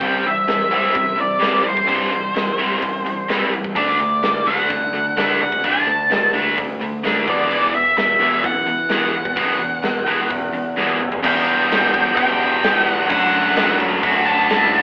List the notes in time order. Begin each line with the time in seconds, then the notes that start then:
Already playing: G5
0.00 C2 C3 E3 G3 C4, kick, open hi-hat
0.24 C3 E3 G3 E5, open hi-hat
0.47 C3 E3 G3, snare, open hi-hat
0.71 C2 C3 E3 G3 C4 E5, open hi-hat
0.94 C3 E3 G3, kick, open hi-hat
1.17 C3 E3 G3 D5, open hi-hat
1.40 C3 E3 G3 C4, snare, open hi-hat
1.64 C3 E3 G3 C5, open hi-hat
1.77 C2, kick
1.87 G2 C3 E3 G3 C4, kick, open hi-hat
2.02 snare
2.12 C2 C3 E3 G3, open hi-hat
2.34 C3 E3 G3, snare, open hi-hat
2.58 C3 E3 G3 C4, open hi-hat
2.81 C2 C3 E3 G3, kick, open hi-hat
3.06 C3 E3 G3, open hi-hat
3.28 C3 E3 G3 C4, snare, open hi-hat
3.53 C3 E3 G3, open hi-hat
3.64 C2, kick
3.75 D2 D3 A3 D4 D5, kick, open hi-hat
4.00 D3 A3, open hi-hat
4.23 D3 A3, snare, open hi-hat
4.36 snare
4.46 D2 D3 A3 D4 F#5, open hi-hat
4.69 D3 A3, kick, open hi-hat
4.94 D3 A3, open hi-hat
5.17 D3 A3 D4, snare, open hi-hat
5.41 D3 A3 F#5, open hi-hat
5.52 D2, kick
5.64 A1 D3 A3 D4 A5, kick, open hi-hat
5.86 D2 D3 A3, open hi-hat
6.11 D3 A3, snare, open hi-hat
6.33 D3 A3 D4, open hi-hat
6.58 D2 D3 A3, kick, open hi-hat
6.81 D3 A3, open hi-hat
7.04 D3 A3 D4, snare, open hi-hat
7.27 E2 B2 E3 D5, kick, open hi-hat
7.49 E2 B2 E3, open hi-hat
7.73 E2 B2 E5, open hi-hat
7.97 E2 B2 E5, snare, open hi-hat
8.20 E2 B2 E3, open hi-hat
8.43 E2 B2 E3 F#5, kick, open hi-hat
8.67 E2 B2, open hi-hat
8.89 E2 B2 E3, snare, open hi-hat
9.13 E2 B2, open hi-hat
9.25 E2, kick
9.36 B1 E2 B2 E3, kick, open hi-hat
9.60 E2 B2, open hi-hat
9.83 E2 B2, snare, open hi-hat
10.06 E2 B2 E3, open hi-hat
10.30 E2 B2, kick, open hi-hat
10.52 E2 B2, open hi-hat
10.76 E2 B2 E3, snare
10.89 kick
11.00 E2 B2, mid tom
11.12 E2, floor tom
11.23 E2 B2 E3 G3 B3 G4 G5, kick, crash
11.48 crash
11.60 snare
11.72 snare, crash
11.84 snare
11.94 E2, kick, crash
12.16 E2 B2 E3 G3 B3 G4 G5, kick, crash
12.41 crash
12.64 snare, crash
12.81 F#5
12.87 crash
13.08 F#2 D3 F#3 A3 D4 F#4 F#5, kick, crash
13.34 crash
13.46 snare
13.56 snare, crash
13.71 snare
13.80 F#2, kick, crash
14.02 F#2 F#3 A3 D4 F#4, kick, crash
14.26 F#2 A5, crash
14.50 snare, crash
14.73 crash